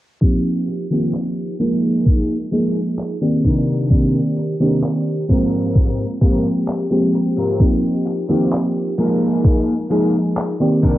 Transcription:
0.21 F3 A#3 C4 D#4 G4, kick, closed hi-hat
0.67 muted clean electric guitar stroke, closed hi-hat
0.91 D#3 F3 A#3 C4 D#4 F4 G4
1.14 clap
1.59 F3 G#3 A#3 D#4 G#4 A#4, closed hi-hat
2.06 kick, closed hi-hat
2.51 F3 G#3 A#3 D#4 G#4, closed hi-hat
2.99 clap, closed hi-hat
3.21 D#3 A#3 C4 G4 D5
3.44 C3 D4 D#4 A#4, kick, closed hi-hat
3.90 D#3 A#3 C4 G4 D5, kick, closed hi-hat
4.37 muted clean electric guitar stroke, closed hi-hat
4.60 C3 D#3 A#3 C4 D4 D#4 G4 A#4 D5
4.83 clap
5.28 G#2 F3 G#3 A#3 C4 F4 G4 A#4, kick, closed hi-hat
5.75 kick, closed hi-hat
6.21 G#2 F3 G#3 A#3 C4 F4 G4 A#4, kick, closed hi-hat
6.68 clap, closed hi-hat
6.90 F3 G#3 A#3 C4 G4
7.13 muted clean electric guitar stroke, closed hi-hat
7.37 G#2 C4 F4 G4 A#4
7.59 F3 A#3 C4 D#4 G4, kick, closed hi-hat
8.05 muted clean electric guitar stroke, closed hi-hat
8.29 D#3 F3 A#3 C4 D#4 F4 G4
8.52 clap, closed hi-hat
8.98 F3 G#3 A#3 D#4 G#4 A#4, closed hi-hat
9.44 kick, closed hi-hat
9.90 F3 G#3 A#3 D#4 G#4, closed hi-hat
10.37 clap, closed hi-hat
10.60 D#3 A#3 C4 G4 D5
10.82 C3 D4 D#4 A#4, kick, closed hi-hat

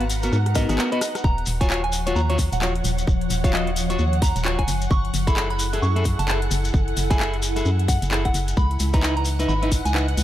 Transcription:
Already playing: G#1 F#4 B4 F#5 A#5
0.01 closed hi-hat
0.10 open hi-hat, shekere
0.22 B3 F#4 A#4, closed hi-hat, shekere
0.32 G#2, cross-stick, swell, shekere
0.46 cross-stick, closed hi-hat
0.55 B3 F#4 A#4 D#5, kick, cross-stick, open hi-hat, shekere
0.69 G#1 B3 F#4 G#4, cross-stick, closed hi-hat, shekere
0.78 B3 F#4 A#4, cross-stick, clap, shekere
0.92 B3 F#4 B4 D#5, closed hi-hat
1.01 cross-stick, open hi-hat, shekere
1.15 cross-stick, closed hi-hat, shekere
1.24 D#1 F3 F#5 A#5, kick, shekere
1.38 closed hi-hat
1.46 D#1, open hi-hat, shekere
1.61 F4 F#4 C#5 G#5, kick, closed hi-hat, shekere
1.70 F4 F#4 C#5 F#5, clap, shekere
1.84 G#5, closed hi-hat
1.92 open hi-hat, shekere
2.06 F4 F#4 C#5, closed hi-hat, shekere
2.16 D#2 A#5, shekere
2.30 F4 F#4 C#5, closed hi-hat
2.39 kick, open hi-hat, shekere
2.52 D#1 F#5, closed hi-hat, shekere
2.62 F4 F#4 C#5, clap, shekere
2.75 closed hi-hat
2.84 D#1, open hi-hat, shekere
2.98 closed hi-hat, shekere
3.07 D#1, kick, shekere
3.21 closed hi-hat
3.30 D#1, open hi-hat, shekere
3.44 F4 F#4 C#5 F5, kick, closed hi-hat, shekere
3.53 F4 F#4 D#5, clap, shekere
3.67 closed hi-hat
3.76 open hi-hat, shekere
3.90 F4 F#4 C#5, closed hi-hat, shekere
3.99 D#2, shekere
4.13 closed hi-hat
4.22 A#5, kick, open hi-hat, shekere
4.36 D#1, closed hi-hat, shekere
4.45 F4 F#4 C#5, clap, shekere
4.59 G#5, kick, closed hi-hat
4.68 F#1 E4, open hi-hat, shekere
4.81 closed hi-hat, shekere
4.86 A4
4.91 F#1 C#6, kick, shekere
5.05 closed hi-hat
5.14 F#1, open hi-hat, shekere
5.27 E4 G#4 A4 B5, kick, closed hi-hat, shekere
5.31 G#5
5.36 E4 G#4 A4, clap, shekere
5.50 B5, closed hi-hat
5.59 open hi-hat, shekere
5.73 E4 G#4 A4, closed hi-hat, shekere
5.82 F#2 C#6, shekere
5.96 E4 G#4 A4, closed hi-hat
6.05 kick, open hi-hat, shekere
6.19 F#1 A5, closed hi-hat, shekere
6.28 E4 G#4 A4, clap, shekere
6.42 closed hi-hat
6.51 F#1, open hi-hat, shekere
6.64 closed hi-hat, shekere
6.74 F#1, kick, shekere
6.88 closed hi-hat
6.97 F#1, open hi-hat, shekere
7.10 E4 G#4 A4 G#5, kick, closed hi-hat, shekere
7.20 E4 G#4 A4, clap, shekere
7.34 closed hi-hat
7.42 open hi-hat, shekere
7.56 E4 G#4 A4, closed hi-hat, shekere
7.65 F#2, shekere
7.79 closed hi-hat
7.88 F#5, kick, open hi-hat, shekere
8.02 F#1, closed hi-hat, shekere
8.11 E4 G#4 A4, clap, shekere
8.25 F#5, kick, closed hi-hat
8.34 F#1, open hi-hat, shekere
8.48 closed hi-hat, shekere
8.57 C#2 F#5 B5, kick, shekere
8.71 closed hi-hat
8.80 C#2 D#5, open hi-hat, shekere
8.93 D#4 E4 B4 A#5, kick, closed hi-hat, shekere
9.02 D#4 E4 B4, clap, shekere
9.09 B5
9.17 A#5, closed hi-hat
9.25 open hi-hat, shekere
9.39 D#4 E4 B4, closed hi-hat, shekere
9.48 G#1 B5, shekere
9.62 D#4 E4 B4, closed hi-hat
9.72 kick, open hi-hat, shekere
9.85 C#2 G#5, closed hi-hat, shekere
9.94 D#4 E4 B4, clap, shekere
10.08 closed hi-hat
10.17 C#2, open hi-hat, shekere

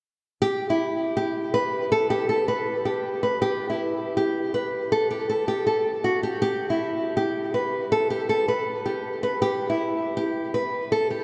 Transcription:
0.42 G4
0.70 E4
1.17 G4
1.54 B4
1.92 A4
2.10 G4
2.29 A4
2.48 B4
2.85 G4
3.23 B4
3.42 G4
3.70 E4
4.17 G4
4.54 B4
4.92 A4
5.11 G4
5.29 A4
5.48 G4
5.67 A4
6.04 F#4
6.23 G4
6.42 G4
6.70 E4
7.17 G4
7.54 B4
7.92 A4
8.10 G4
8.29 A4
8.48 B4
8.86 G4
9.23 B4
9.42 G4
9.70 E4
10.17 G4
10.54 B4
10.92 A4
11.10 G4

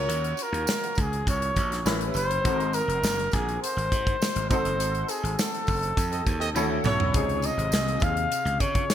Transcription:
Already playing: C#4 F4 F#4 A#4 C#5
0.08 D#2, closed hi-hat
0.24 closed hi-hat
0.37 closed hi-hat, tambourine
0.43 A#4
0.52 D#2, closed hi-hat
0.67 snare, tambourine
0.84 closed hi-hat
0.95 C#2, kick, closed hi-hat, tambourine
1.00 G#4
1.13 closed hi-hat
1.27 C2 C#5, kick, closed hi-hat, tambourine
1.42 closed hi-hat
1.56 A#1, kick, closed hi-hat, tambourine
1.72 snare, closed hi-hat
1.85 A1 C#4 E4 G4 A#4, snare, tambourine
1.93 B4
2.01 closed hi-hat
2.14 F#1 C5, closed hi-hat, tambourine
2.31 closed hi-hat
2.43 G#1 C4 D#4 F#4 A4, kick, closed hi-hat, tambourine
2.53 A#4
2.60 closed hi-hat
2.73 A#4, closed hi-hat, tambourine
2.88 F1, closed hi-hat
3.03 F#1, snare, tambourine
3.19 closed hi-hat
3.32 A#1 G#4, kick, snare, closed hi-hat, tambourine
3.49 closed hi-hat
3.62 C5, closed hi-hat, tambourine
3.77 G#1, closed hi-hat
3.92 G#2, kick, closed hi-hat, tambourine
4.07 kick, closed hi-hat
4.22 snare, tambourine
4.36 G#1, closed hi-hat
4.50 G#1 C4 D#4 F#4 A4 C5, kick, closed hi-hat, tambourine
4.65 F#1, closed hi-hat
4.79 G#1, closed hi-hat, tambourine
4.95 closed hi-hat
5.08 G#4, closed hi-hat, tambourine
5.23 G#1, closed hi-hat
5.39 A4, snare, tambourine
5.54 closed hi-hat
5.67 F#1, kick, open hi-hat, tambourine
5.83 closed hi-hat
5.97 F2, kick, closed hi-hat, tambourine
6.11 C4 A4 D#5, closed hi-hat
6.26 D#2, kick, closed hi-hat, tambourine
6.40 C4 A4 D#5, closed hi-hat
6.55 D2 C#4 E4 F#4 A4, high tom, tambourine
6.84 B1 A3 F#4 C#5, mid tom, tambourine
7.00 floor tom
7.14 C#2 C3 D#4 F4 G#4, kick, closed hi-hat
7.29 closed hi-hat
7.42 D#5, closed hi-hat, tambourine
7.57 G#1, closed hi-hat
7.72 C2, snare, tambourine
7.88 closed hi-hat
8.00 D#2 F5, kick, closed hi-hat, tambourine
8.17 closed hi-hat
8.32 closed hi-hat, tambourine
8.45 C#2, closed hi-hat
8.60 C#3 C#5, kick, closed hi-hat, tambourine
8.75 kick, closed hi-hat
8.90 snare, tambourine

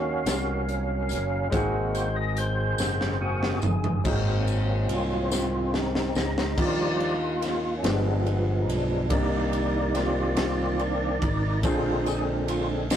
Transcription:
Already playing: D#2 D#3 F#3 A#3 C#4 D#4 F#4 A#4 F5
0.26 C2, snare, closed hi-hat, tambourine
0.69 closed hi-hat
1.09 F#1, closed hi-hat, tambourine
1.50 G#1 G#2 F#3 G#3 A#3 C4 D#4 F#4, kick, closed hi-hat, tambourine
1.54 G#4
1.95 C5, closed hi-hat, tambourine
2.16 D#5
2.37 C5, closed hi-hat
2.78 F#1, snare, tambourine
3.01 snare
3.21 A#3 C4 F#4 G#4
3.43 snare
3.62 F#1, floor tom, tambourine
3.84 floor tom
4.04 G#1 G#2 D#3 F#3 G#3 A#3 C4 D#4 F#4 G#4, kick, crash, tambourine
4.47 ride, tambourine
4.88 C2 C4 F4, ride
5.32 snare, tambourine
5.74 D#4, snare
5.95 snare
6.15 C#2 D#4, snare, tambourine
6.38 snare
6.57 D#2 D#3 F3 G3 A#3 D4 D#4 F4 G4 D5, kick, crash
7.00 ride
7.42 snare, ride
7.77 C#4
7.82 G1 G2 F3 G#3 B3 D4 F4 G4, snare, ride
8.26 B3, ride
8.60 D#4
8.68 B1 D4, ride
9.09 C2 C3 D#3 G3 A#3 C4 D4 D#4 D5, kick, ride
9.14 G4
9.53 ride
9.94 A#3 C4 F4, snare, ride
10.37 snare, ride
10.79 D4, ride
11.21 G#1 D#4, kick, ride
11.63 A#1 A#2 D3 G#3 A#3 C4 D4 F4 G#4, kick, ride, tambourine
12.06 G#4, ride, tambourine
12.48 F4, ride
12.90 F4, snare, ride, tambourine

